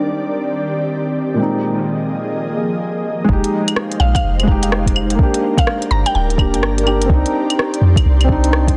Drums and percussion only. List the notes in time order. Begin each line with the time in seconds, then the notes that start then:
3.29 kick
3.44 closed hi-hat
3.68 closed hi-hat, claves
3.76 cross-stick
3.92 closed hi-hat
4.15 kick, closed hi-hat, claves
4.40 closed hi-hat, claves
4.48 kick
4.63 closed hi-hat
4.72 cross-stick
4.86 kick, closed hi-hat
4.96 claves
5.10 closed hi-hat
5.19 kick
5.34 closed hi-hat
5.58 kick, closed hi-hat, claves
5.67 cross-stick
5.82 closed hi-hat
6.06 closed hi-hat, claves
6.30 closed hi-hat
6.38 kick, claves
6.54 closed hi-hat
6.63 cross-stick
6.78 closed hi-hat
6.87 claves
7.02 closed hi-hat
7.10 kick
7.26 closed hi-hat
7.50 closed hi-hat, claves
7.59 cross-stick
7.74 closed hi-hat
7.96 kick, closed hi-hat, claves
8.21 closed hi-hat, claves
8.29 kick
8.44 closed hi-hat
8.53 cross-stick
8.67 kick, closed hi-hat